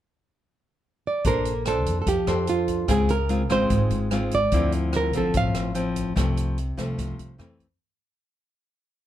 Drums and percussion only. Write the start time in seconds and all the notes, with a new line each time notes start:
1.25 kick, closed hi-hat
1.45 closed hi-hat
1.65 cross-stick, closed hi-hat
1.86 kick, closed hi-hat
2.07 kick, closed hi-hat
2.27 cross-stick, closed hi-hat
2.47 closed hi-hat
2.68 kick, closed hi-hat
2.88 kick, cross-stick, closed hi-hat
3.09 closed hi-hat
3.29 closed hi-hat
3.50 kick, cross-stick, closed hi-hat
3.70 kick, closed hi-hat
3.90 closed hi-hat
4.11 cross-stick, closed hi-hat
4.31 kick, closed hi-hat
4.52 kick, closed hi-hat
4.72 closed hi-hat
4.93 cross-stick, closed hi-hat
5.13 kick, closed hi-hat
5.34 kick, closed hi-hat
5.55 cross-stick, closed hi-hat
5.75 closed hi-hat
5.96 kick, closed hi-hat
6.17 kick, cross-stick, closed hi-hat
6.37 closed hi-hat
6.58 closed hi-hat
6.78 kick, cross-stick, closed hi-hat
6.98 kick, closed hi-hat
7.19 closed hi-hat
7.39 cross-stick, closed hi-hat
7.60 kick, closed hi-hat